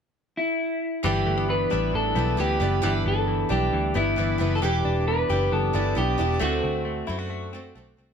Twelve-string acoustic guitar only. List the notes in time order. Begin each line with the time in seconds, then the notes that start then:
1.03 G3 D4 E4 B4
1.70 G3 D4 E4 B4
2.16 G3 D4 E4 B4
2.37 G3 D4 E4 B4
2.60 G3 D4 E4 B4
2.82 G3 D4 E4 B4
3.49 G3 D4 E4 B4
3.94 G3 D4 E4 B4
4.16 G3 D4 E4 B4
4.38 G3 D4 E4 B4
4.62 E3 B3 D4 G4
5.29 E3 B3 D4 G4
5.73 E3 B3 D4 G4
5.95 E3 B3 D4 G4
6.18 E3 B3 D4 G4
6.39 D3 A3 C4 F#4
7.07 D3 A3 C4 F#4
7.53 D3 A3 C4 F#4
7.75 D3 A3 C4 F#4
7.97 D3 A3 C4 F#4